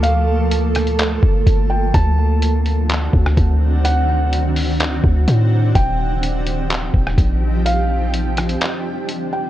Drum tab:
HH |x---x-xxx---x---|x---x-x-x---x---|x---x-o-x---x---|x---x-x-x---x---|
CP |--------x-------|--------x-------|--------x-------|--------x-------|
SD |------r---------|-----------r----|----------------|-----------r----|
BD |----------o-o---|o---------o-o---|----------o-----|o---------o-o---|

HH |x---x-xxx---x---|
CP |--------x-------|
SD |------r---------|
BD |----------------|